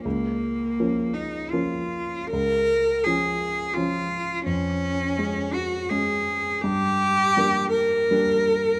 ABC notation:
X:1
M:3/4
L:1/8
Q:1/4=82
K:Db
V:1 name="Cello"
B,3 E F2 | B2 A2 F2 | D3 G A2 | [K:Gdor] G3 B3 |]
V:2 name="Grand piano"
D,,2 [F,B,D]2 [F,B,D]2 | D,,2 [F,D]2 [F,D]2 | F,,2 [A,D]2 [A,D]2 | [K:Gdor] G,,2 [G,B,D]2 [G,B,D]2 |]